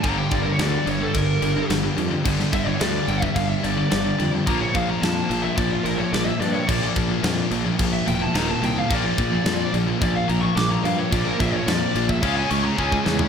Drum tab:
CC |x-x-x-x-x-x-x-x-|x-x-x-x-x-x-x-x-|x-x-x-x-x-x-x-x-|x-x-x-x-x-x-x-x-|
SD |----o-------o---|-o--o-------o---|----o-------o---|----o-------o---|
FT |----------------|----------------|----------------|----------------|
BD |o-o-----o-------|o-o----oo-------|o-o-----o-------|o-o-----o-------|

CC |x-x-x-x-x-x-x-x-|x-x-x-x-x-x-----|
SD |----o-------o---|----o---------o-|
FT |----------------|---------------o|
BD |o-o-----o-------|o-o----oo---oo--|